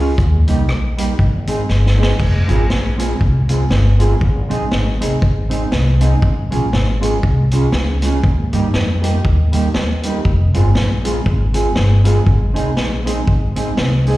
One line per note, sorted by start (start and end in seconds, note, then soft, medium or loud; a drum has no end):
0.00 0.10 C#2 loud
0.00 0.11 G#3 medium
0.00 0.11 C#4 loud
0.00 0.11 F4 loud
0.00 0.11 G#4 loud
0.18 0.43 D#2 loud
0.18 kick loud
0.18 hi-hat pedal medium
0.47 0.69 C2 medium
0.47 0.61 G3 medium
0.47 0.61 A#3 medium
0.47 0.61 D#4 medium
0.47 0.62 G4 medium
0.47 closed hi-hat medium
0.69 1.12 A#1 medium
0.69 muted clean electric guitar stroke soft
0.69 cross-stick loud
0.97 1.11 G3 medium
0.97 1.11 A#3 medium
0.97 1.11 D#4 medium
0.97 1.12 G4 medium
0.97 closed hi-hat loud
1.19 1.62 G#1 loud
1.19 muted clean electric guitar stroke soft
1.19 kick loud
1.47 1.61 G#3 medium
1.47 1.61 C4 medium
1.47 1.62 D#4 medium
1.47 1.62 G#4 medium
1.47 closed hi-hat loud
1.69 2.12 G1 loud
1.69 snare medium
1.86 snare medium
1.97 2.11 G#3 medium
1.97 2.12 C4 medium
1.97 2.12 D#4 medium
1.97 2.12 G#4 medium
2.03 snare loud
2.20 2.45 F1 medium
2.20 kick loud
2.20 crash medium
2.47 2.67 G#1 medium
2.47 2.61 G#3 medium
2.47 2.62 C4 medium
2.47 2.62 F4 medium
2.47 2.62 G#4 loud
2.47 closed hi-hat medium
2.69 3.13 A#1 loud
2.69 muted clean electric guitar stroke soft
2.69 snare loud
2.98 3.12 G#3 medium
2.98 3.12 C4 medium
2.98 3.12 F4 medium
2.98 3.13 G#4 medium
2.98 closed hi-hat loud
3.20 3.64 C2 medium
3.20 muted clean electric guitar stroke soft
3.20 kick loud
3.49 3.63 G#3 medium
3.49 3.63 C4 medium
3.49 3.63 F4 medium
3.49 3.63 G#4 medium
3.49 closed hi-hat medium
3.71 4.14 G1 loud
3.71 snare loud
3.99 4.13 G#3 medium
3.99 4.13 C4 loud
3.99 4.13 F4 loud
3.99 4.14 G#4 loud
3.99 closed hi-hat medium
4.21 4.46 G#1 loud
4.21 kick loud
4.49 4.68 A#1 medium
4.49 4.63 G#3 medium
4.49 4.63 C4 loud
4.49 4.64 D#4 loud
4.49 4.64 G#4 loud
4.49 closed hi-hat medium
4.71 4.97 G#1 medium
4.71 muted clean electric guitar stroke soft
4.71 snare loud
5.00 5.19 C2 medium
5.00 5.14 G#3 medium
5.00 5.14 C4 medium
5.00 5.14 D#4 medium
5.00 5.15 G#4 medium
5.00 closed hi-hat loud
5.21 5.65 G#1 medium
5.21 muted clean electric guitar stroke soft
5.21 kick loud
5.49 5.64 G#3 medium
5.49 5.64 C4 medium
5.49 5.64 D#4 medium
5.49 5.64 G#4 medium
5.49 closed hi-hat loud
5.72 6.15 C2 loud
5.72 snare loud
6.00 6.14 G#3 medium
6.00 6.14 C4 medium
6.00 6.15 D#4 loud
6.00 6.15 G#4 medium
6.00 closed hi-hat loud
6.22 6.47 C#2 loud
6.22 kick loud
6.51 6.70 A#1 medium
6.51 6.65 G#3 medium
6.51 6.65 C#4 medium
6.51 6.65 F4 medium
6.51 6.66 G#4 medium
6.51 closed hi-hat medium
6.72 7.16 G#1 medium
6.72 muted clean electric guitar stroke soft
6.72 snare loud
7.01 7.15 G#3 medium
7.01 7.15 C#4 medium
7.01 7.15 F4 medium
7.01 7.16 G#4 medium
7.01 closed hi-hat loud
7.23 7.66 C2 medium
7.23 kick loud
7.51 7.66 G#3 medium
7.51 7.66 C#4 medium
7.51 7.66 F4 medium
7.51 7.66 G#4 loud
7.51 closed hi-hat medium
7.72 8.16 C#2 loud
7.72 snare loud
8.02 8.16 G#3 loud
8.02 8.17 C#4 loud
8.02 8.17 F4 medium
8.02 8.17 G#4 loud
8.02 closed hi-hat loud
8.24 8.49 D#2 loud
8.24 kick loud
8.53 8.71 G2 loud
8.53 8.67 G3 medium
8.53 8.67 A#3 medium
8.53 8.67 D#4 medium
8.53 8.67 G4 loud
8.53 closed hi-hat medium
8.74 9.17 F2 medium
8.74 snare loud
9.02 9.16 G3 medium
9.02 9.16 A#3 medium
9.02 9.17 D#4 medium
9.02 9.17 G4 loud
9.02 closed hi-hat loud
9.23 9.68 D#2 medium
9.23 muted clean electric guitar stroke soft
9.23 kick loud
9.52 9.67 G3 medium
9.52 9.67 A#3 medium
9.52 9.67 D#4 medium
9.52 9.68 G4 medium
9.52 closed hi-hat loud
9.74 10.18 D#2 medium
9.74 snare loud
10.03 10.18 G3 medium
10.03 10.18 A#3 medium
10.03 10.18 D#4 medium
10.03 10.18 G4 medium
10.03 closed hi-hat medium
10.25 10.50 F1 medium
10.25 kick loud
10.54 10.73 G1 medium
10.54 10.68 G#3 medium
10.54 10.68 C4 medium
10.54 10.68 F4 loud
10.54 10.69 G#4 medium
10.54 closed hi-hat medium
10.75 11.19 A#1 medium
10.75 snare loud
11.04 11.18 G#3 medium
11.04 11.18 C4 medium
11.04 11.19 F4 medium
11.04 11.19 G#4 loud
11.04 closed hi-hat loud
11.25 11.69 G#1 loud
11.25 muted clean electric guitar stroke soft
11.25 kick loud
11.54 11.68 G#3 medium
11.54 11.68 C4 medium
11.54 11.69 F4 medium
11.54 11.69 G#4 medium
11.54 closed hi-hat loud
11.76 12.20 G1 loud
11.76 snare loud
12.04 12.18 G#3 medium
12.04 12.18 C4 medium
12.04 12.19 F4 loud
12.04 12.19 G#4 loud
12.04 closed hi-hat medium
12.26 12.52 G#1 loud
12.26 kick loud
12.54 12.74 C2 medium
12.54 12.69 G#3 medium
12.54 12.69 C4 medium
12.54 12.69 D#4 loud
12.54 12.69 G#4 loud
12.54 closed hi-hat medium
12.75 13.20 A#1 medium
12.75 muted clean electric guitar stroke soft
12.75 snare loud
13.05 13.19 G#3 medium
13.05 13.20 C4 medium
13.05 13.19 D#4 medium
13.05 13.20 G#4 medium
13.05 closed hi-hat loud
13.26 13.70 G#1 medium
13.26 muted clean electric guitar stroke soft
13.26 kick loud
13.56 13.70 G#3 medium
13.56 13.70 C4 medium
13.56 13.70 D#4 medium
13.56 13.70 G#4 medium
13.56 closed hi-hat loud
13.77 14.17 C2 loud
13.77 snare loud
14.07 14.17 G#3 medium
14.07 14.17 C4 medium
14.07 14.17 D#4 loud
14.07 14.17 G#4 loud
14.07 open hi-hat medium